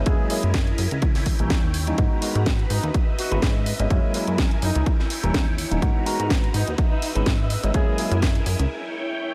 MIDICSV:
0, 0, Header, 1, 6, 480
1, 0, Start_track
1, 0, Tempo, 480000
1, 64, Time_signature, 4, 2, 24, 8
1, 9342, End_track
2, 0, Start_track
2, 0, Title_t, "String machine"
2, 0, Program_c, 0, 50
2, 54, Note_on_c, 0, 80, 87
2, 56, Note_on_c, 0, 64, 83
2, 56, Note_on_c, 0, 70, 71
2, 1009, Note_off_c, 0, 80, 0
2, 1010, Note_off_c, 0, 70, 0
2, 1018, Note_on_c, 0, 73, 73
2, 1018, Note_on_c, 0, 79, 93
2, 1961, Note_off_c, 0, 64, 0
2, 1971, Note_off_c, 0, 73, 0
2, 1971, Note_off_c, 0, 79, 0
2, 1980, Note_on_c, 0, 71, 74
2, 1983, Note_on_c, 0, 66, 76
2, 1983, Note_on_c, 0, 82, 84
2, 2696, Note_off_c, 0, 66, 0
2, 2696, Note_off_c, 0, 82, 0
2, 2705, Note_on_c, 0, 76, 90
2, 2706, Note_on_c, 0, 75, 83
2, 3883, Note_off_c, 0, 71, 0
2, 3892, Note_off_c, 0, 76, 0
2, 3893, Note_off_c, 0, 75, 0
2, 3900, Note_on_c, 0, 64, 85
2, 3900, Note_on_c, 0, 70, 73
2, 3904, Note_on_c, 0, 80, 86
2, 4852, Note_off_c, 0, 70, 0
2, 4854, Note_off_c, 0, 80, 0
2, 4860, Note_on_c, 0, 79, 89
2, 4863, Note_on_c, 0, 73, 76
2, 5803, Note_off_c, 0, 64, 0
2, 5812, Note_off_c, 0, 79, 0
2, 5814, Note_off_c, 0, 73, 0
2, 5822, Note_on_c, 0, 66, 77
2, 5822, Note_on_c, 0, 71, 77
2, 5823, Note_on_c, 0, 82, 83
2, 6536, Note_off_c, 0, 66, 0
2, 6536, Note_off_c, 0, 82, 0
2, 6537, Note_on_c, 0, 76, 92
2, 6540, Note_on_c, 0, 75, 82
2, 7724, Note_off_c, 0, 71, 0
2, 7728, Note_off_c, 0, 76, 0
2, 7730, Note_off_c, 0, 75, 0
2, 7739, Note_on_c, 0, 80, 90
2, 7740, Note_on_c, 0, 70, 72
2, 7741, Note_on_c, 0, 64, 77
2, 8692, Note_off_c, 0, 70, 0
2, 8692, Note_off_c, 0, 80, 0
2, 8693, Note_off_c, 0, 64, 0
2, 8703, Note_on_c, 0, 64, 80
2, 8703, Note_on_c, 0, 73, 76
2, 8704, Note_on_c, 0, 79, 91
2, 9342, Note_off_c, 0, 64, 0
2, 9342, Note_off_c, 0, 73, 0
2, 9342, Note_off_c, 0, 79, 0
2, 9342, End_track
3, 0, Start_track
3, 0, Title_t, "Horn section"
3, 0, Program_c, 1, 61
3, 67, Note_on_c, 1, 68, 88
3, 437, Note_off_c, 1, 68, 0
3, 2703, Note_on_c, 1, 63, 86
3, 2870, Note_off_c, 1, 63, 0
3, 3184, Note_on_c, 1, 66, 90
3, 3350, Note_off_c, 1, 66, 0
3, 4624, Note_on_c, 1, 63, 89
3, 4917, Note_off_c, 1, 63, 0
3, 6544, Note_on_c, 1, 63, 89
3, 6710, Note_off_c, 1, 63, 0
3, 6915, Note_on_c, 1, 63, 90
3, 6985, Note_off_c, 1, 63, 0
3, 7024, Note_on_c, 1, 63, 77
3, 7108, Note_off_c, 1, 63, 0
3, 7748, Note_on_c, 1, 68, 96
3, 8117, Note_off_c, 1, 68, 0
3, 9342, End_track
4, 0, Start_track
4, 0, Title_t, "Tine electric piano"
4, 0, Program_c, 2, 4
4, 60, Note_on_c, 2, 54, 85
4, 61, Note_on_c, 2, 56, 77
4, 63, Note_on_c, 2, 58, 76
4, 65, Note_on_c, 2, 61, 76
4, 68, Note_on_c, 2, 64, 94
4, 276, Note_off_c, 2, 54, 0
4, 277, Note_off_c, 2, 56, 0
4, 278, Note_off_c, 2, 58, 0
4, 278, Note_off_c, 2, 61, 0
4, 280, Note_off_c, 2, 64, 0
4, 300, Note_on_c, 2, 54, 73
4, 304, Note_on_c, 2, 56, 67
4, 304, Note_on_c, 2, 58, 67
4, 307, Note_on_c, 2, 61, 67
4, 308, Note_on_c, 2, 64, 81
4, 516, Note_off_c, 2, 54, 0
4, 518, Note_off_c, 2, 56, 0
4, 518, Note_off_c, 2, 58, 0
4, 519, Note_off_c, 2, 61, 0
4, 520, Note_off_c, 2, 64, 0
4, 1395, Note_on_c, 2, 52, 79
4, 1395, Note_on_c, 2, 55, 75
4, 1398, Note_on_c, 2, 58, 76
4, 1399, Note_on_c, 2, 61, 76
4, 1402, Note_on_c, 2, 63, 86
4, 1604, Note_off_c, 2, 52, 0
4, 1604, Note_off_c, 2, 55, 0
4, 1605, Note_off_c, 2, 58, 0
4, 1606, Note_off_c, 2, 61, 0
4, 1607, Note_off_c, 2, 63, 0
4, 1872, Note_on_c, 2, 52, 79
4, 1873, Note_on_c, 2, 55, 73
4, 1875, Note_on_c, 2, 58, 74
4, 1879, Note_on_c, 2, 61, 74
4, 1879, Note_on_c, 2, 63, 91
4, 1956, Note_off_c, 2, 52, 0
4, 1957, Note_off_c, 2, 55, 0
4, 1958, Note_off_c, 2, 58, 0
4, 1959, Note_off_c, 2, 63, 0
4, 1960, Note_off_c, 2, 61, 0
4, 1982, Note_on_c, 2, 56, 82
4, 1984, Note_on_c, 2, 59, 74
4, 1986, Note_on_c, 2, 63, 76
4, 1988, Note_on_c, 2, 66, 77
4, 1990, Note_on_c, 2, 70, 89
4, 2197, Note_off_c, 2, 56, 0
4, 2198, Note_off_c, 2, 59, 0
4, 2199, Note_off_c, 2, 63, 0
4, 2200, Note_off_c, 2, 66, 0
4, 2201, Note_off_c, 2, 70, 0
4, 2222, Note_on_c, 2, 56, 75
4, 2224, Note_on_c, 2, 59, 67
4, 2226, Note_on_c, 2, 63, 68
4, 2227, Note_on_c, 2, 66, 68
4, 2230, Note_on_c, 2, 70, 78
4, 2437, Note_off_c, 2, 56, 0
4, 2438, Note_off_c, 2, 59, 0
4, 2439, Note_off_c, 2, 63, 0
4, 2440, Note_off_c, 2, 66, 0
4, 2441, Note_off_c, 2, 70, 0
4, 3309, Note_on_c, 2, 56, 83
4, 3312, Note_on_c, 2, 59, 75
4, 3314, Note_on_c, 2, 61, 74
4, 3316, Note_on_c, 2, 63, 74
4, 3319, Note_on_c, 2, 64, 94
4, 3521, Note_off_c, 2, 56, 0
4, 3522, Note_off_c, 2, 59, 0
4, 3523, Note_off_c, 2, 61, 0
4, 3524, Note_off_c, 2, 63, 0
4, 3526, Note_off_c, 2, 64, 0
4, 3794, Note_on_c, 2, 56, 83
4, 3796, Note_on_c, 2, 59, 76
4, 3797, Note_on_c, 2, 61, 77
4, 3800, Note_on_c, 2, 63, 73
4, 3802, Note_on_c, 2, 64, 92
4, 3877, Note_off_c, 2, 56, 0
4, 3878, Note_off_c, 2, 59, 0
4, 3878, Note_off_c, 2, 61, 0
4, 3880, Note_off_c, 2, 63, 0
4, 3881, Note_off_c, 2, 64, 0
4, 3903, Note_on_c, 2, 54, 88
4, 3906, Note_on_c, 2, 56, 78
4, 3908, Note_on_c, 2, 58, 78
4, 3909, Note_on_c, 2, 61, 77
4, 3912, Note_on_c, 2, 64, 93
4, 4117, Note_off_c, 2, 54, 0
4, 4119, Note_off_c, 2, 56, 0
4, 4120, Note_off_c, 2, 58, 0
4, 4120, Note_off_c, 2, 61, 0
4, 4122, Note_off_c, 2, 64, 0
4, 4144, Note_on_c, 2, 54, 74
4, 4148, Note_on_c, 2, 56, 67
4, 4149, Note_on_c, 2, 58, 67
4, 4151, Note_on_c, 2, 61, 67
4, 4153, Note_on_c, 2, 64, 83
4, 4358, Note_off_c, 2, 54, 0
4, 4360, Note_off_c, 2, 56, 0
4, 4361, Note_off_c, 2, 58, 0
4, 4362, Note_off_c, 2, 61, 0
4, 4362, Note_off_c, 2, 64, 0
4, 5233, Note_on_c, 2, 52, 85
4, 5233, Note_on_c, 2, 55, 76
4, 5235, Note_on_c, 2, 58, 76
4, 5238, Note_on_c, 2, 61, 78
4, 5238, Note_on_c, 2, 63, 91
4, 5443, Note_off_c, 2, 52, 0
4, 5443, Note_off_c, 2, 55, 0
4, 5444, Note_off_c, 2, 58, 0
4, 5445, Note_off_c, 2, 61, 0
4, 5446, Note_off_c, 2, 63, 0
4, 5710, Note_on_c, 2, 52, 83
4, 5712, Note_on_c, 2, 55, 74
4, 5714, Note_on_c, 2, 58, 74
4, 5716, Note_on_c, 2, 61, 76
4, 5717, Note_on_c, 2, 63, 88
4, 5795, Note_off_c, 2, 52, 0
4, 5796, Note_off_c, 2, 55, 0
4, 5797, Note_off_c, 2, 58, 0
4, 5798, Note_off_c, 2, 61, 0
4, 5798, Note_off_c, 2, 63, 0
4, 5818, Note_on_c, 2, 56, 84
4, 5820, Note_on_c, 2, 59, 80
4, 5824, Note_on_c, 2, 63, 80
4, 5824, Note_on_c, 2, 66, 79
4, 5826, Note_on_c, 2, 70, 93
4, 6035, Note_off_c, 2, 56, 0
4, 6036, Note_off_c, 2, 59, 0
4, 6038, Note_off_c, 2, 63, 0
4, 6038, Note_off_c, 2, 66, 0
4, 6039, Note_off_c, 2, 70, 0
4, 6057, Note_on_c, 2, 56, 76
4, 6058, Note_on_c, 2, 59, 70
4, 6062, Note_on_c, 2, 63, 70
4, 6063, Note_on_c, 2, 66, 68
4, 6065, Note_on_c, 2, 70, 82
4, 6275, Note_off_c, 2, 56, 0
4, 6275, Note_off_c, 2, 59, 0
4, 6277, Note_off_c, 2, 63, 0
4, 6277, Note_off_c, 2, 66, 0
4, 6278, Note_off_c, 2, 70, 0
4, 7152, Note_on_c, 2, 56, 84
4, 7154, Note_on_c, 2, 59, 78
4, 7155, Note_on_c, 2, 61, 77
4, 7157, Note_on_c, 2, 63, 76
4, 7160, Note_on_c, 2, 64, 92
4, 7362, Note_off_c, 2, 56, 0
4, 7363, Note_off_c, 2, 59, 0
4, 7364, Note_off_c, 2, 61, 0
4, 7365, Note_off_c, 2, 63, 0
4, 7366, Note_off_c, 2, 64, 0
4, 7635, Note_on_c, 2, 56, 84
4, 7636, Note_on_c, 2, 59, 76
4, 7638, Note_on_c, 2, 61, 74
4, 7642, Note_on_c, 2, 63, 78
4, 7642, Note_on_c, 2, 64, 90
4, 7718, Note_off_c, 2, 56, 0
4, 7718, Note_off_c, 2, 59, 0
4, 7719, Note_off_c, 2, 61, 0
4, 7721, Note_off_c, 2, 63, 0
4, 7721, Note_off_c, 2, 64, 0
4, 7741, Note_on_c, 2, 54, 85
4, 7744, Note_on_c, 2, 56, 77
4, 7746, Note_on_c, 2, 58, 78
4, 7748, Note_on_c, 2, 61, 78
4, 7749, Note_on_c, 2, 64, 96
4, 7956, Note_off_c, 2, 54, 0
4, 7958, Note_off_c, 2, 56, 0
4, 7959, Note_off_c, 2, 58, 0
4, 7960, Note_off_c, 2, 61, 0
4, 7961, Note_off_c, 2, 64, 0
4, 7983, Note_on_c, 2, 54, 75
4, 7987, Note_on_c, 2, 56, 69
4, 7988, Note_on_c, 2, 58, 68
4, 7990, Note_on_c, 2, 61, 69
4, 7990, Note_on_c, 2, 64, 82
4, 8198, Note_off_c, 2, 54, 0
4, 8200, Note_off_c, 2, 56, 0
4, 8200, Note_off_c, 2, 58, 0
4, 8201, Note_off_c, 2, 61, 0
4, 8201, Note_off_c, 2, 64, 0
4, 9342, End_track
5, 0, Start_track
5, 0, Title_t, "Analog synth bass"
5, 0, Program_c, 3, 38
5, 63, Note_on_c, 3, 42, 97
5, 152, Note_off_c, 3, 42, 0
5, 434, Note_on_c, 3, 42, 92
5, 726, Note_off_c, 3, 42, 0
5, 783, Note_on_c, 3, 42, 85
5, 872, Note_off_c, 3, 42, 0
5, 913, Note_on_c, 3, 37, 90
5, 1262, Note_on_c, 3, 39, 103
5, 1277, Note_off_c, 3, 37, 0
5, 1352, Note_off_c, 3, 39, 0
5, 1396, Note_on_c, 3, 34, 94
5, 1497, Note_off_c, 3, 34, 0
5, 1503, Note_on_c, 3, 39, 44
5, 1609, Note_off_c, 3, 39, 0
5, 1635, Note_on_c, 3, 39, 87
5, 1927, Note_off_c, 3, 39, 0
5, 1983, Note_on_c, 3, 44, 99
5, 2072, Note_off_c, 3, 44, 0
5, 2352, Note_on_c, 3, 44, 94
5, 2645, Note_off_c, 3, 44, 0
5, 2702, Note_on_c, 3, 44, 89
5, 2791, Note_off_c, 3, 44, 0
5, 2832, Note_on_c, 3, 39, 93
5, 2906, Note_off_c, 3, 39, 0
5, 3313, Note_on_c, 3, 32, 102
5, 3387, Note_off_c, 3, 32, 0
5, 3425, Note_on_c, 3, 44, 104
5, 3727, Note_off_c, 3, 44, 0
5, 3793, Note_on_c, 3, 32, 94
5, 3867, Note_off_c, 3, 32, 0
5, 3904, Note_on_c, 3, 42, 99
5, 3992, Note_off_c, 3, 42, 0
5, 4276, Note_on_c, 3, 42, 92
5, 4567, Note_off_c, 3, 42, 0
5, 4624, Note_on_c, 3, 42, 88
5, 4712, Note_off_c, 3, 42, 0
5, 4755, Note_on_c, 3, 37, 95
5, 4828, Note_off_c, 3, 37, 0
5, 5234, Note_on_c, 3, 27, 100
5, 5307, Note_off_c, 3, 27, 0
5, 5343, Note_on_c, 3, 39, 102
5, 5646, Note_off_c, 3, 39, 0
5, 5713, Note_on_c, 3, 27, 94
5, 5787, Note_off_c, 3, 27, 0
5, 5822, Note_on_c, 3, 44, 94
5, 5911, Note_off_c, 3, 44, 0
5, 6195, Note_on_c, 3, 44, 98
5, 6486, Note_off_c, 3, 44, 0
5, 6542, Note_on_c, 3, 44, 90
5, 6631, Note_off_c, 3, 44, 0
5, 6677, Note_on_c, 3, 39, 94
5, 6749, Note_off_c, 3, 39, 0
5, 7156, Note_on_c, 3, 32, 102
5, 7229, Note_off_c, 3, 32, 0
5, 7262, Note_on_c, 3, 44, 104
5, 7566, Note_off_c, 3, 44, 0
5, 7635, Note_on_c, 3, 32, 93
5, 7708, Note_off_c, 3, 32, 0
5, 7745, Note_on_c, 3, 42, 99
5, 7833, Note_off_c, 3, 42, 0
5, 8112, Note_on_c, 3, 42, 98
5, 8405, Note_off_c, 3, 42, 0
5, 8461, Note_on_c, 3, 42, 87
5, 8551, Note_off_c, 3, 42, 0
5, 8592, Note_on_c, 3, 37, 94
5, 8666, Note_off_c, 3, 37, 0
5, 9342, End_track
6, 0, Start_track
6, 0, Title_t, "Drums"
6, 60, Note_on_c, 9, 42, 59
6, 64, Note_on_c, 9, 36, 125
6, 160, Note_off_c, 9, 42, 0
6, 164, Note_off_c, 9, 36, 0
6, 300, Note_on_c, 9, 46, 105
6, 399, Note_off_c, 9, 46, 0
6, 431, Note_on_c, 9, 42, 49
6, 531, Note_off_c, 9, 42, 0
6, 538, Note_on_c, 9, 42, 63
6, 540, Note_on_c, 9, 38, 118
6, 543, Note_on_c, 9, 36, 124
6, 638, Note_off_c, 9, 42, 0
6, 640, Note_off_c, 9, 38, 0
6, 643, Note_off_c, 9, 36, 0
6, 672, Note_on_c, 9, 42, 34
6, 772, Note_off_c, 9, 42, 0
6, 781, Note_on_c, 9, 46, 106
6, 881, Note_off_c, 9, 46, 0
6, 913, Note_on_c, 9, 42, 51
6, 1013, Note_off_c, 9, 42, 0
6, 1019, Note_on_c, 9, 42, 62
6, 1023, Note_on_c, 9, 36, 122
6, 1119, Note_off_c, 9, 42, 0
6, 1123, Note_off_c, 9, 36, 0
6, 1151, Note_on_c, 9, 46, 62
6, 1153, Note_on_c, 9, 38, 35
6, 1251, Note_off_c, 9, 46, 0
6, 1253, Note_off_c, 9, 38, 0
6, 1259, Note_on_c, 9, 46, 105
6, 1262, Note_on_c, 9, 36, 60
6, 1359, Note_off_c, 9, 46, 0
6, 1362, Note_off_c, 9, 36, 0
6, 1392, Note_on_c, 9, 42, 48
6, 1492, Note_off_c, 9, 42, 0
6, 1501, Note_on_c, 9, 42, 62
6, 1502, Note_on_c, 9, 36, 123
6, 1503, Note_on_c, 9, 38, 114
6, 1601, Note_off_c, 9, 42, 0
6, 1602, Note_off_c, 9, 36, 0
6, 1603, Note_off_c, 9, 38, 0
6, 1740, Note_on_c, 9, 46, 107
6, 1840, Note_off_c, 9, 46, 0
6, 1873, Note_on_c, 9, 42, 49
6, 1973, Note_off_c, 9, 42, 0
6, 1980, Note_on_c, 9, 42, 61
6, 1983, Note_on_c, 9, 36, 115
6, 2080, Note_off_c, 9, 42, 0
6, 2083, Note_off_c, 9, 36, 0
6, 2220, Note_on_c, 9, 46, 107
6, 2320, Note_off_c, 9, 46, 0
6, 2354, Note_on_c, 9, 42, 47
6, 2454, Note_off_c, 9, 42, 0
6, 2462, Note_on_c, 9, 42, 62
6, 2464, Note_on_c, 9, 36, 123
6, 2464, Note_on_c, 9, 38, 109
6, 2562, Note_off_c, 9, 42, 0
6, 2564, Note_off_c, 9, 36, 0
6, 2564, Note_off_c, 9, 38, 0
6, 2593, Note_on_c, 9, 42, 34
6, 2693, Note_off_c, 9, 42, 0
6, 2702, Note_on_c, 9, 46, 103
6, 2802, Note_off_c, 9, 46, 0
6, 2835, Note_on_c, 9, 42, 50
6, 2935, Note_off_c, 9, 42, 0
6, 2944, Note_on_c, 9, 36, 118
6, 2944, Note_on_c, 9, 42, 60
6, 3044, Note_off_c, 9, 36, 0
6, 3044, Note_off_c, 9, 42, 0
6, 3186, Note_on_c, 9, 46, 105
6, 3286, Note_off_c, 9, 46, 0
6, 3316, Note_on_c, 9, 42, 49
6, 3416, Note_off_c, 9, 42, 0
6, 3423, Note_on_c, 9, 42, 62
6, 3424, Note_on_c, 9, 36, 112
6, 3425, Note_on_c, 9, 38, 106
6, 3523, Note_off_c, 9, 42, 0
6, 3524, Note_off_c, 9, 36, 0
6, 3525, Note_off_c, 9, 38, 0
6, 3663, Note_on_c, 9, 46, 102
6, 3763, Note_off_c, 9, 46, 0
6, 3796, Note_on_c, 9, 42, 49
6, 3896, Note_off_c, 9, 42, 0
6, 3904, Note_on_c, 9, 36, 114
6, 3904, Note_on_c, 9, 42, 65
6, 4004, Note_off_c, 9, 36, 0
6, 4004, Note_off_c, 9, 42, 0
6, 4141, Note_on_c, 9, 46, 99
6, 4241, Note_off_c, 9, 46, 0
6, 4275, Note_on_c, 9, 42, 50
6, 4375, Note_off_c, 9, 42, 0
6, 4382, Note_on_c, 9, 42, 65
6, 4384, Note_on_c, 9, 36, 117
6, 4384, Note_on_c, 9, 38, 111
6, 4482, Note_off_c, 9, 42, 0
6, 4483, Note_off_c, 9, 36, 0
6, 4484, Note_off_c, 9, 38, 0
6, 4513, Note_on_c, 9, 42, 36
6, 4613, Note_off_c, 9, 42, 0
6, 4622, Note_on_c, 9, 46, 97
6, 4722, Note_off_c, 9, 46, 0
6, 4755, Note_on_c, 9, 42, 53
6, 4855, Note_off_c, 9, 42, 0
6, 4863, Note_on_c, 9, 42, 64
6, 4864, Note_on_c, 9, 36, 114
6, 4963, Note_off_c, 9, 42, 0
6, 4964, Note_off_c, 9, 36, 0
6, 4998, Note_on_c, 9, 38, 34
6, 5098, Note_off_c, 9, 38, 0
6, 5102, Note_on_c, 9, 46, 102
6, 5202, Note_off_c, 9, 46, 0
6, 5236, Note_on_c, 9, 42, 52
6, 5336, Note_off_c, 9, 42, 0
6, 5343, Note_on_c, 9, 36, 110
6, 5343, Note_on_c, 9, 42, 63
6, 5345, Note_on_c, 9, 38, 106
6, 5443, Note_off_c, 9, 36, 0
6, 5443, Note_off_c, 9, 42, 0
6, 5445, Note_off_c, 9, 38, 0
6, 5584, Note_on_c, 9, 46, 100
6, 5684, Note_off_c, 9, 46, 0
6, 5715, Note_on_c, 9, 42, 50
6, 5815, Note_off_c, 9, 42, 0
6, 5822, Note_on_c, 9, 36, 111
6, 5823, Note_on_c, 9, 42, 67
6, 5922, Note_off_c, 9, 36, 0
6, 5923, Note_off_c, 9, 42, 0
6, 6064, Note_on_c, 9, 46, 102
6, 6164, Note_off_c, 9, 46, 0
6, 6197, Note_on_c, 9, 42, 54
6, 6297, Note_off_c, 9, 42, 0
6, 6303, Note_on_c, 9, 36, 117
6, 6304, Note_on_c, 9, 42, 66
6, 6306, Note_on_c, 9, 38, 114
6, 6403, Note_off_c, 9, 36, 0
6, 6403, Note_off_c, 9, 42, 0
6, 6406, Note_off_c, 9, 38, 0
6, 6438, Note_on_c, 9, 42, 38
6, 6538, Note_off_c, 9, 42, 0
6, 6542, Note_on_c, 9, 46, 102
6, 6642, Note_off_c, 9, 46, 0
6, 6675, Note_on_c, 9, 42, 55
6, 6775, Note_off_c, 9, 42, 0
6, 6782, Note_on_c, 9, 42, 67
6, 6783, Note_on_c, 9, 36, 116
6, 6882, Note_off_c, 9, 42, 0
6, 6883, Note_off_c, 9, 36, 0
6, 7022, Note_on_c, 9, 46, 102
6, 7122, Note_off_c, 9, 46, 0
6, 7155, Note_on_c, 9, 42, 54
6, 7255, Note_off_c, 9, 42, 0
6, 7262, Note_on_c, 9, 42, 66
6, 7263, Note_on_c, 9, 36, 106
6, 7264, Note_on_c, 9, 38, 113
6, 7362, Note_off_c, 9, 42, 0
6, 7363, Note_off_c, 9, 36, 0
6, 7364, Note_off_c, 9, 38, 0
6, 7502, Note_on_c, 9, 46, 98
6, 7602, Note_off_c, 9, 46, 0
6, 7635, Note_on_c, 9, 42, 54
6, 7735, Note_off_c, 9, 42, 0
6, 7742, Note_on_c, 9, 42, 69
6, 7744, Note_on_c, 9, 36, 113
6, 7842, Note_off_c, 9, 42, 0
6, 7844, Note_off_c, 9, 36, 0
6, 7981, Note_on_c, 9, 46, 100
6, 8081, Note_off_c, 9, 46, 0
6, 8115, Note_on_c, 9, 42, 54
6, 8215, Note_off_c, 9, 42, 0
6, 8223, Note_on_c, 9, 42, 71
6, 8224, Note_on_c, 9, 36, 115
6, 8225, Note_on_c, 9, 38, 120
6, 8323, Note_off_c, 9, 42, 0
6, 8324, Note_off_c, 9, 36, 0
6, 8325, Note_off_c, 9, 38, 0
6, 8354, Note_on_c, 9, 42, 39
6, 8454, Note_off_c, 9, 42, 0
6, 8461, Note_on_c, 9, 46, 105
6, 8561, Note_off_c, 9, 46, 0
6, 8594, Note_on_c, 9, 42, 56
6, 8694, Note_off_c, 9, 42, 0
6, 9342, End_track
0, 0, End_of_file